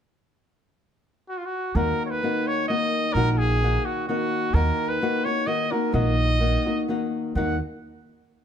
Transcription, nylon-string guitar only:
1.75 D#3 A#3 D#4 F#4
2.23 D#3 A#3 D#4 F#4
2.69 D#3 A#3 D#4 F#4
3.16 D#3 A#3 D#4 F#4
3.62 D#3 A#3 D#4 F#4
4.09 D#3 A#3 D#4 F#4
4.56 D#3 A#3 D#4 F#4
5.01 D#3 A#3 D#4 F#4
5.26 A#3 D#4 F#4
5.47 D#3 A#3 D#4 F#4
5.72 A#3 D#4 F#4
5.93 D#3 A#3 D#4 F#4
6.40 D#3 A#3 D#4 F#4
6.66 A#3 D#4 F#4
6.88 D#3 A#3 D#4 F#4
7.35 D#3 A#3 D#4 F#4

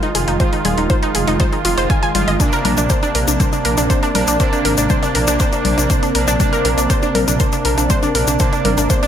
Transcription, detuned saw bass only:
0.15 F1
0.28 F1
0.65 D#1
0.78 D#1
1.15 F1
1.28 F1
1.65 F1
1.78 F1
2.15 G1
2.28 G1
2.65 A#1
2.78 A#1
3.15 A#1
3.28 A#1
3.65 A#1
3.78 A#1
4.15 A#1
4.28 A#1
4.65 G#1
4.78 G#1
5.15 A#1
5.28 A#1
5.65 A#1
5.78 A#1
6.15 A#1
6.28 A#1
6.65 A#1
6.78 A#1
7.15 A#1
7.28 A#1
7.65 A#1
7.78 A#1
8.15 A#1
8.28 A#1
8.65 G#1
8.78 G#1

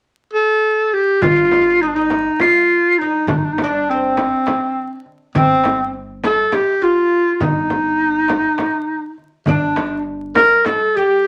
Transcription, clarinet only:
0.33 A4
0.94 G4
1.22 F4
1.81 D#4
1.87 D4
1.95 D#4
2.41 F4
2.99 D#4
3.29 D4
3.37 D#4
3.45 D4
3.53 D#4
3.62 D4
3.90 C4
5.35 C4
6.25 A4
6.54 G4
6.83 F4
7.33 F4
7.41 D#4
9.48 D4
10.36 A#4
10.65 A4
10.96 G4

